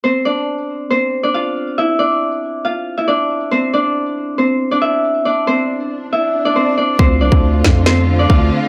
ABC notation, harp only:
X:1
M:4/4
L:1/16
Q:1/4=138
K:Dm
V:1 name="Harp"
[Cc]2 [Dd]6 [Cc]3 [Dd] [Ff]2 z2 | [Ee]2 [Dd]6 [Ff]3 [Ee] [Dd]2 z2 | [Cc]2 [Dd]6 [Cc]3 [Dd] [Ee]2 z2 | [Dd]2 [Cc]6 [Ee]3 [Dd] [Cc]2 [Dd]2 |
[Cc]2 [Dd]6 [Cc]3 [Dd] [Ff]2 z2 |]